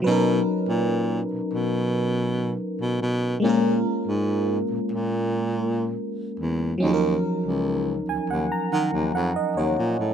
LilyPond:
<<
  \new Staff \with { instrumentName = "FM electric piano" } { \time 4/4 \key ees \minor \tempo 4 = 71 << { r1 | r1 | r4. aes''16 ges''16 bes''16 ges''8 ges''16 ees''16 des''8. | } \\ { <fis cis' dis' ais' b'>1 | <aes bes des' f' bes'>1 | <f ges des' ees' aes' bes'>1 | } >> }
  \new Staff \with { instrumentName = "Baritone saxophone" } { \clef bass \time 4/4 \key ees \minor b,8 r16 ais,8. b,16 b,4~ b,16 r16 b,16 b,8 | bes,8 r16 aes,8. bes,16 bes,4~ bes,16 r8 fes,8 | ees,8 r16 des,8. ees,16 ees,16 r16 ees16 ees,16 f,16 r16 ees,16 bes,16 a,16 | }
>>